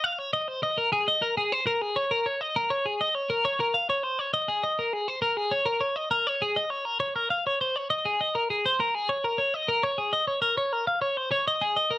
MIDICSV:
0, 0, Header, 1, 2, 480
1, 0, Start_track
1, 0, Tempo, 594059
1, 744, Time_signature, 6, 3, 24, 8
1, 9681, End_track
2, 0, Start_track
2, 0, Title_t, "Clean electric guitar"
2, 0, Program_c, 0, 27
2, 31, Note_on_c, 0, 77, 79
2, 151, Note_off_c, 0, 77, 0
2, 151, Note_on_c, 0, 73, 70
2, 266, Note_off_c, 0, 73, 0
2, 269, Note_on_c, 0, 75, 64
2, 388, Note_off_c, 0, 75, 0
2, 388, Note_on_c, 0, 72, 68
2, 506, Note_off_c, 0, 72, 0
2, 510, Note_on_c, 0, 75, 71
2, 627, Note_off_c, 0, 75, 0
2, 627, Note_on_c, 0, 70, 79
2, 745, Note_off_c, 0, 70, 0
2, 748, Note_on_c, 0, 68, 93
2, 866, Note_off_c, 0, 68, 0
2, 872, Note_on_c, 0, 75, 74
2, 985, Note_on_c, 0, 70, 80
2, 988, Note_off_c, 0, 75, 0
2, 1105, Note_off_c, 0, 70, 0
2, 1110, Note_on_c, 0, 68, 71
2, 1231, Note_off_c, 0, 68, 0
2, 1231, Note_on_c, 0, 72, 78
2, 1344, Note_off_c, 0, 72, 0
2, 1347, Note_on_c, 0, 70, 73
2, 1468, Note_off_c, 0, 70, 0
2, 1468, Note_on_c, 0, 68, 90
2, 1585, Note_on_c, 0, 73, 79
2, 1586, Note_off_c, 0, 68, 0
2, 1704, Note_off_c, 0, 73, 0
2, 1706, Note_on_c, 0, 70, 76
2, 1825, Note_off_c, 0, 70, 0
2, 1827, Note_on_c, 0, 73, 72
2, 1947, Note_off_c, 0, 73, 0
2, 1947, Note_on_c, 0, 75, 75
2, 2065, Note_off_c, 0, 75, 0
2, 2070, Note_on_c, 0, 70, 79
2, 2185, Note_on_c, 0, 73, 91
2, 2187, Note_off_c, 0, 70, 0
2, 2304, Note_off_c, 0, 73, 0
2, 2308, Note_on_c, 0, 68, 72
2, 2426, Note_off_c, 0, 68, 0
2, 2430, Note_on_c, 0, 75, 80
2, 2543, Note_off_c, 0, 75, 0
2, 2543, Note_on_c, 0, 73, 73
2, 2663, Note_off_c, 0, 73, 0
2, 2665, Note_on_c, 0, 70, 82
2, 2784, Note_off_c, 0, 70, 0
2, 2787, Note_on_c, 0, 73, 87
2, 2905, Note_off_c, 0, 73, 0
2, 2909, Note_on_c, 0, 70, 84
2, 3023, Note_on_c, 0, 77, 77
2, 3026, Note_off_c, 0, 70, 0
2, 3143, Note_off_c, 0, 77, 0
2, 3148, Note_on_c, 0, 73, 80
2, 3260, Note_off_c, 0, 73, 0
2, 3260, Note_on_c, 0, 72, 69
2, 3385, Note_off_c, 0, 72, 0
2, 3385, Note_on_c, 0, 73, 77
2, 3501, Note_off_c, 0, 73, 0
2, 3504, Note_on_c, 0, 75, 74
2, 3623, Note_on_c, 0, 68, 92
2, 3624, Note_off_c, 0, 75, 0
2, 3743, Note_off_c, 0, 68, 0
2, 3745, Note_on_c, 0, 75, 82
2, 3864, Note_off_c, 0, 75, 0
2, 3870, Note_on_c, 0, 70, 80
2, 3986, Note_off_c, 0, 70, 0
2, 3986, Note_on_c, 0, 68, 72
2, 4105, Note_off_c, 0, 68, 0
2, 4105, Note_on_c, 0, 72, 88
2, 4214, Note_off_c, 0, 72, 0
2, 4217, Note_on_c, 0, 70, 77
2, 4339, Note_off_c, 0, 70, 0
2, 4339, Note_on_c, 0, 68, 86
2, 4456, Note_on_c, 0, 73, 76
2, 4461, Note_off_c, 0, 68, 0
2, 4570, Note_on_c, 0, 70, 75
2, 4579, Note_off_c, 0, 73, 0
2, 4691, Note_on_c, 0, 73, 73
2, 4697, Note_off_c, 0, 70, 0
2, 4815, Note_off_c, 0, 73, 0
2, 4815, Note_on_c, 0, 75, 72
2, 4933, Note_off_c, 0, 75, 0
2, 4936, Note_on_c, 0, 70, 79
2, 5066, Note_off_c, 0, 70, 0
2, 5066, Note_on_c, 0, 73, 88
2, 5184, Note_off_c, 0, 73, 0
2, 5186, Note_on_c, 0, 68, 74
2, 5303, Note_on_c, 0, 75, 78
2, 5305, Note_off_c, 0, 68, 0
2, 5415, Note_off_c, 0, 75, 0
2, 5415, Note_on_c, 0, 73, 75
2, 5536, Note_off_c, 0, 73, 0
2, 5536, Note_on_c, 0, 70, 79
2, 5653, Note_off_c, 0, 70, 0
2, 5656, Note_on_c, 0, 73, 81
2, 5779, Note_off_c, 0, 73, 0
2, 5783, Note_on_c, 0, 70, 82
2, 5899, Note_off_c, 0, 70, 0
2, 5902, Note_on_c, 0, 77, 78
2, 6023, Note_off_c, 0, 77, 0
2, 6033, Note_on_c, 0, 73, 74
2, 6146, Note_off_c, 0, 73, 0
2, 6149, Note_on_c, 0, 72, 73
2, 6268, Note_off_c, 0, 72, 0
2, 6268, Note_on_c, 0, 73, 72
2, 6382, Note_off_c, 0, 73, 0
2, 6385, Note_on_c, 0, 75, 81
2, 6504, Note_off_c, 0, 75, 0
2, 6508, Note_on_c, 0, 68, 90
2, 6626, Note_off_c, 0, 68, 0
2, 6631, Note_on_c, 0, 75, 73
2, 6747, Note_off_c, 0, 75, 0
2, 6747, Note_on_c, 0, 70, 75
2, 6865, Note_off_c, 0, 70, 0
2, 6871, Note_on_c, 0, 68, 74
2, 6987, Note_off_c, 0, 68, 0
2, 6994, Note_on_c, 0, 72, 84
2, 7109, Note_off_c, 0, 72, 0
2, 7110, Note_on_c, 0, 70, 81
2, 7229, Note_off_c, 0, 70, 0
2, 7229, Note_on_c, 0, 68, 94
2, 7346, Note_on_c, 0, 73, 73
2, 7347, Note_off_c, 0, 68, 0
2, 7465, Note_off_c, 0, 73, 0
2, 7469, Note_on_c, 0, 70, 74
2, 7581, Note_on_c, 0, 73, 75
2, 7587, Note_off_c, 0, 70, 0
2, 7709, Note_off_c, 0, 73, 0
2, 7709, Note_on_c, 0, 75, 78
2, 7825, Note_on_c, 0, 70, 77
2, 7827, Note_off_c, 0, 75, 0
2, 7945, Note_off_c, 0, 70, 0
2, 7947, Note_on_c, 0, 73, 91
2, 8065, Note_on_c, 0, 68, 78
2, 8066, Note_off_c, 0, 73, 0
2, 8184, Note_on_c, 0, 75, 80
2, 8185, Note_off_c, 0, 68, 0
2, 8299, Note_off_c, 0, 75, 0
2, 8303, Note_on_c, 0, 73, 75
2, 8414, Note_off_c, 0, 73, 0
2, 8418, Note_on_c, 0, 70, 84
2, 8541, Note_off_c, 0, 70, 0
2, 8545, Note_on_c, 0, 73, 83
2, 8667, Note_off_c, 0, 73, 0
2, 8667, Note_on_c, 0, 70, 97
2, 8782, Note_off_c, 0, 70, 0
2, 8786, Note_on_c, 0, 77, 75
2, 8897, Note_off_c, 0, 77, 0
2, 8901, Note_on_c, 0, 73, 75
2, 9026, Note_off_c, 0, 73, 0
2, 9026, Note_on_c, 0, 72, 70
2, 9139, Note_off_c, 0, 72, 0
2, 9142, Note_on_c, 0, 73, 75
2, 9264, Note_off_c, 0, 73, 0
2, 9272, Note_on_c, 0, 75, 78
2, 9385, Note_on_c, 0, 68, 96
2, 9389, Note_off_c, 0, 75, 0
2, 9506, Note_off_c, 0, 68, 0
2, 9506, Note_on_c, 0, 75, 74
2, 9620, Note_on_c, 0, 70, 77
2, 9626, Note_off_c, 0, 75, 0
2, 9681, Note_off_c, 0, 70, 0
2, 9681, End_track
0, 0, End_of_file